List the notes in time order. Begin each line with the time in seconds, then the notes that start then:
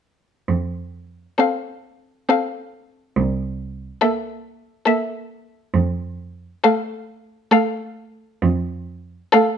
0.48 F2
1.38 C4 A4 F5
2.29 C4 A4 F5
3.16 C2
4.02 A#3 A4 E5
4.86 A#3 A4 E5
5.74 F2
6.64 A3 A4 F5
7.52 A3 A4 F5
8.42 F2
9.32 A3 A4 F5